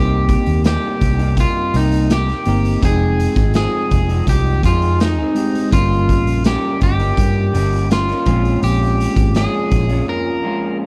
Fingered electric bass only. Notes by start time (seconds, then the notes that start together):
Already playing: C2
0.47 D#2
1.02 C2
1.74 C2
2.46 G1
2.83 F1
3.36 G#1
3.91 F1
4.27 C2
4.64 F2
5.73 G1
6.27 A#1
6.82 G1
7.17 G2
7.53 G1
8.26 A#1
8.63 A#1
9.16 G#1
9.72 A#1